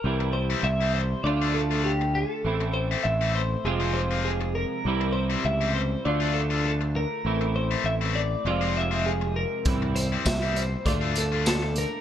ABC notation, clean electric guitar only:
X:1
M:4/4
L:1/8
Q:1/4=100
K:Cmix
V:1 name="Clean electric guitar"
B c e c d A G A- | A c e c _A c A B- | B c e c d A A B- | B c e d d e _A B- |
B c e c d A A B |]